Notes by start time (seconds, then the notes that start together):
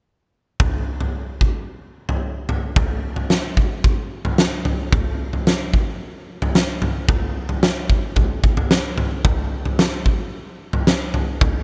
0.60 kick, floor tom
1.00 floor tom
1.41 kick
2.09 floor tom
2.49 floor tom
2.76 kick, floor tom
3.16 floor tom
3.30 snare
3.57 kick
3.84 kick
4.25 floor tom
4.38 snare
4.65 floor tom
4.92 kick, floor tom
5.33 floor tom
5.47 snare
5.74 kick
6.42 floor tom
6.55 snare
6.82 floor tom
7.09 kick, floor tom
7.49 floor tom
7.63 snare
7.90 kick
8.16 kick, floor tom
8.44 kick
8.57 floor tom
8.71 snare
8.98 floor tom
9.25 kick, floor tom
9.65 floor tom
9.79 snare
10.06 kick
10.73 floor tom
10.87 snare
11.14 floor tom
11.41 kick, floor tom